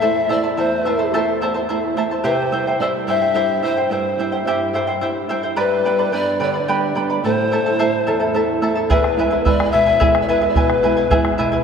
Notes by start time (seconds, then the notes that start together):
Already playing: E2 E5
0.02 A3 C4 E4 A4 C5 E5 A5
0.29 A3 C4 E4 C5 D5 E5 A5
0.43 E4 C5 A5
0.57 E2 E4 C5 E5 A5
0.85 A3 C4 E4 C5 E5 A5
0.99 E4 C5 A5
1.13 A3 C4 E4 A4 C5 E5 A5
1.41 E2 E4 C5 E5 A5
1.54 E4 C5 A5
1.69 A3 C4 E4 C5 E5 A5
1.96 A3 C4 E4 C5 E5 A5
2.11 E4 C5 A5
2.24 C3 E4 G4 C5 E5 G5
2.52 G3 C4 E4 C5 E5 G5
2.67 E4 C5 G5
2.79 G3 C4 E4 C5 D5 E5 G5
3.07 G2 E4 C5 E5 G5
3.22 E4 C5 G5
3.33 G3 C4 E4 G4 C5 E5 G5
3.62 G3 C4 E4 C5 E5 G5
3.77 E4 C5 G5
3.90 G2 E4 C5 E5 G5
4.18 G3 C4 E4 C5 E5 G5
4.32 E4 C5 G5
4.45 G3 C4 E4 G4 C5 E5 G5
4.73 G2 E4 C5 E5 G5
4.87 E4 C5 G5
5.01 G3 C4 E4 C5 E5 G5
5.29 G3 C4 E4 C5 E5 G5
5.43 E4 C5 G5
5.56 G2 G4 B4 D5 G5 B5
5.85 G3 B3 D4 B4 D5 G5 B5
5.99 B4 D5 B5
6.12 G3 B3 D4 B4 D5 G5 B5
6.40 D3 B4 D5 G5 B5
6.54 B4 D5 B5
6.68 G3 B3 D4 G4 B4 D5 G5 B5
6.95 G3 B3 D4 B4 D5 G5 B5
7.10 B4 D5 B5
7.24 A2 E4 A4 C5 E5 A5
7.51 A3 C4 E4 A4 E5 A5
7.66 E4 A4 A5
7.79 A3 C4 E4 A4 C5 E5 A5
8.07 E2 E4 A4 E5 A5
8.20 E4 A4 A5
8.34 A3 C4 E4 A4 E5 A5
8.61 A3 C4 E4 A4 E5 A5
8.75 E4 A4 A5
8.90 E2 E4 G#4 B4 E5 G#5, bombo low
9.04 bombo rim
9.16 G#3 B3 E4 B4 E5 G#5
9.31 E4 B4 G#5
9.45 G#3 B3 E4 B4 D5 E5 G#5, bombo low
9.60 bombo rim
9.71 B2 E4 B4 E5 G#5
9.86 E4 B4 G#5
10.00 G#3 B3 E4 G#4 B4 E5 G#5, bombo low
10.15 bombo rim
10.22 D5
10.28 G#3 B3 E4 B4 E5 G#5, bombo rim
10.41 E4 B4 G#5, bombo rim
10.48 D5
10.55 B2 E4 B4 E5 G#5, bombo low
10.70 bombo rim
10.83 G#3 B3 E4 B4 E5 G#5
10.97 E4 B4 G#5
11.11 G#3 B3 E4 G#4 B4 E5 G#5, bombo low
11.25 bombo rim
11.38 B2 E4 B4 E5 G#5
11.52 E4 B4 G#5